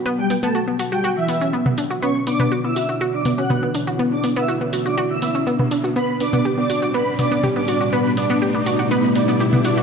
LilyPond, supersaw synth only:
\new Staff \with { instrumentName = "Supersaw synth" } { \time 4/4 \key b \minor \tempo 4 = 122 r16 g''16 r16 a''16 r8. g''16 r16 e''8. r4 | cis'''16 r16 d'''8 r16 e'''8. r16 d'''16 r16 fis'''8 r8. | r16 d'''16 r16 e'''16 r8. d'''16 r16 e'''8. r4 | b''16 r16 d'''8 r16 d'''8. b''16 r16 d'''8 r16 d'''8. |
b''16 r16 d'''8 r16 d'''8. b''16 r16 d'''8 r16 d'''8. | }